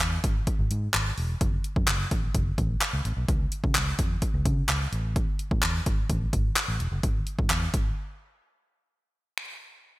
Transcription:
0.00 0.16 E2 loud
0.00 clap loud
0.00 closed hi-hat loud
0.24 0.40 G#1 medium
0.24 kick loud
0.24 closed hi-hat medium
0.47 kick medium
0.47 closed hi-hat loud
0.59 0.67 G#1 loud
0.71 0.87 G#2 loud
0.71 closed hi-hat medium
0.94 1.10 G#1 loud
0.94 clap loud
0.94 closed hi-hat loud
1.18 1.34 E1 medium
1.18 open hi-hat medium
1.41 1.57 F#1 loud
1.41 kick loud
1.41 closed hi-hat medium
1.64 closed hi-hat medium
1.76 1.84 F#2 loud
1.76 kick loud
1.88 2.04 F#1 loud
1.88 clap loud
1.88 closed hi-hat loud
2.11 2.27 A1 loud
2.11 kick loud
2.11 closed hi-hat medium
2.35 2.51 F#1 loud
2.35 kick loud
2.35 closed hi-hat loud
2.58 2.74 A1 loud
2.58 kick loud
2.58 closed hi-hat medium
2.81 clap loud
2.81 closed hi-hat loud
2.93 3.01 C#2 medium
3.05 3.13 A1 loud
3.05 closed hi-hat medium
3.17 3.25 B1 medium
3.28 3.45 C#2 loud
3.28 kick loud
3.28 closed hi-hat medium
3.52 closed hi-hat medium
3.64 3.77 C#3 medium
3.64 kick loud
3.75 3.91 C#2 medium
3.75 clap loud
3.75 closed hi-hat loud
3.99 4.15 F2 medium
3.99 kick loud
3.99 closed hi-hat medium
4.22 kick medium
4.22 closed hi-hat loud
4.34 4.42 C#2 loud
4.46 4.62 C#3 loud
4.46 kick loud
4.46 closed hi-hat medium
4.69 4.85 C#2 loud
4.69 clap loud
4.69 closed hi-hat loud
4.92 5.25 A1 loud
4.92 closed hi-hat medium
5.16 kick loud
5.16 closed hi-hat medium
5.39 closed hi-hat medium
5.51 5.59 A2 loud
5.51 kick loud
5.63 5.79 E2 loud
5.63 clap loud
5.63 closed hi-hat loud
5.86 6.02 G#1 medium
5.86 kick loud
5.86 closed hi-hat loud
6.10 6.26 A1 loud
6.10 kick medium
6.10 closed hi-hat loud
6.33 6.49 G#1 loud
6.33 kick loud
6.33 closed hi-hat medium
6.56 clap loud
6.56 closed hi-hat loud
6.68 6.76 A1 loud
6.80 6.88 E1 loud
6.80 closed hi-hat medium
6.92 7.00 F#1 medium
7.03 7.20 G#1 loud
7.03 kick loud
7.03 closed hi-hat medium
7.27 closed hi-hat medium
7.39 7.47 G#2 loud
7.39 kick loud
7.50 7.66 E2 loud
7.50 clap loud
7.50 closed hi-hat loud
7.74 7.90 G#1 medium
7.74 kick loud
7.74 closed hi-hat medium
9.38 finger snap loud

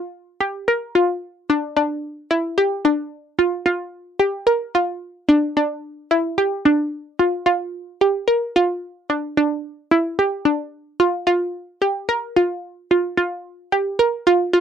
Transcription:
0.00 0.32 F4 medium
0.40 0.64 G4 medium
0.68 0.91 A#4 medium
0.95 1.18 F4 medium
1.50 1.73 D4 medium
1.77 2.23 D4 medium
2.31 2.54 E4 medium
2.58 2.81 G4 medium
2.85 3.08 D4 medium
3.39 3.62 F4 medium
3.66 4.12 F4 medium
4.19 4.43 G4 medium
4.47 4.70 A#4 medium
4.75 4.98 F4 medium
5.29 5.52 D4 medium
5.57 6.03 D4 medium
6.11 6.34 E4 medium
6.38 6.61 G4 medium
6.65 6.89 D4 medium
7.19 7.43 F4 medium
7.46 7.93 F4 medium
8.01 8.24 G4 medium
8.28 8.51 A#4 medium
8.56 8.79 F4 medium
9.10 9.33 D4 medium
9.37 9.84 D4 medium
9.91 10.15 E4 medium
10.19 10.42 G4 medium
10.45 10.69 D4 medium
11.00 11.23 F4 medium
11.27 11.74 F4 medium
11.82 12.05 G4 medium
12.09 12.32 A#4 medium
12.36 12.60 F4 medium
12.91 13.14 F4 medium
13.17 13.64 F4 medium
13.72 13.96 G4 medium
13.99 14.23 A#4 medium
14.27 14.50 F4 medium
14.53 14.61 F4 medium

